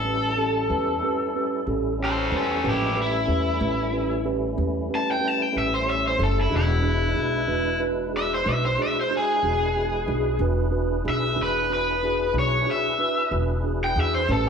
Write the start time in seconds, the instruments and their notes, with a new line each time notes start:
Already playing: upright bass A1, tonewheel organ G3 C#4 E4 A4, overdriven electric guitar A4
0.05 tine electric piano C#4 G4 B4
0.37 tine electric piano C#4 G4 A4
0.69 upright bass E2, tine electric piano C#4 G4 B4
1.03 tine electric piano C#4 G4 B4
1.36 tine electric piano C#4 G4 B4
1.67 upright bass A1, tine electric piano C#4 G4 A4
2.00 tine electric piano C#4 G4 C#5
2.04 overdriven electric guitar A4 C5
2.31 upright bass E2, tine electric piano C#4 G4 B4
2.36 overdriven electric guitar C#4 A4
2.64 upright bass A1, tonewheel organ F3 G#3 A#3 D4, tine electric piano C#4 G4 B4
2.69 overdriven electric guitar E4 G4
2.95 tonewheel organ G3 A3 C#4 E4, tine electric piano C#4 G4 B4
3.02 overdriven electric guitar E4
3.27 upright bass E2, tine electric piano C#4 G4 B4
3.61 upright bass A1, tine electric piano C#4 G4 B4
3.92 tine electric piano C#4 G4 B4
4.25 tine electric piano C#4 G4 B4
4.57 upright bass E2, tine electric piano C#4 G4 B4
4.90 tine electric piano C#4 G4 B4
4.95 overdriven electric guitar A5
5.11 overdriven electric guitar G5
5.20 tine electric piano C#4 G4 B4
5.28 overdriven electric guitar A5
5.42 overdriven electric guitar G5
5.53 upright bass A1, tine electric piano C#4 G4 B4
5.58 overdriven electric guitar E5
5.74 overdriven electric guitar C5
5.85 tine electric piano C#4 G4 C#5
5.90 overdriven electric guitar E5
6.08 overdriven electric guitar C5
6.17 upright bass F#1, tine electric piano C#4 G4 A4
6.23 overdriven electric guitar A4
6.41 overdriven electric guitar E4
6.49 upright bass E1, tonewheel organ G#3 D4 E4 B4, tine electric piano D4 F#4 G#4
6.57 overdriven electric guitar E4
6.83 tine electric piano D4 F#4 G#4
7.14 upright bass B1, tine electric piano D4 F#4 G#4
7.47 upright bass E1, tine electric piano D4 F#4 B4
7.79 tine electric piano D4 F#4 B4
8.12 tine electric piano D4 F#4 G#4
8.17 overdriven electric guitar E5
8.34 overdriven electric guitar C5
8.45 upright bass B1, tine electric piano D4 F#4 B4, overdriven electric guitar E5
8.65 overdriven electric guitar C5
8.79 tine electric piano D4 F#4 G#4
8.83 overdriven electric guitar E5
9.01 overdriven electric guitar C5
9.11 tine electric piano D4 F#4 G#4
9.17 overdriven electric guitar G#4
9.43 upright bass E1, tine electric piano D4 F#4 G#4
9.76 tine electric piano D4 F#4 G#4
10.08 upright bass B1, tine electric piano D4 F#4 G#4
10.39 upright bass E1, tine electric piano D4 F#4 B4, tonewheel organ D4 E4 G#4 B4
10.71 tine electric piano D4 F#4 B4
11.04 upright bass B1, tine electric piano D4 F#4 G#4
11.09 overdriven electric guitar E5
11.36 upright bass E1, tine electric piano D4 F#4 G#4
11.43 overdriven electric guitar B4
11.70 tine electric piano D4 F#4 B4, overdriven electric guitar B4
12.03 tine electric piano D4 F#4 G#4
12.34 upright bass B1, tine electric piano D4 F#4 G#4
12.39 overdriven electric guitar C#5
12.66 tine electric piano D4 F#4 G#4
12.71 overdriven electric guitar E5
12.99 tine electric piano D4 F#4 B4
13.31 upright bass E1, tine electric piano D4 F#4 B4
13.64 tine electric piano D4 F#4 G#4
13.84 overdriven electric guitar G5
13.96 upright bass E2, tine electric piano D4 F#4 G#4
14.01 overdriven electric guitar E5
14.15 overdriven electric guitar C5
14.27 upright bass A1, tonewheel organ G3 C#4 E4 A4, tine electric piano C#4 G4 B4
14.32 overdriven electric guitar A4